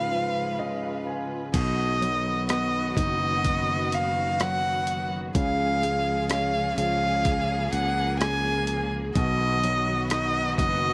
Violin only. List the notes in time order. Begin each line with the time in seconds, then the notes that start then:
Already playing: F5
1.55 D#5
2.50 D#5
2.98 D#5
3.94 F5
4.42 F#5
5.37 F5
6.32 F5
6.79 F5
7.74 F#5
8.21 G#5
9.15 D#5
10.11 D#5
10.58 D#5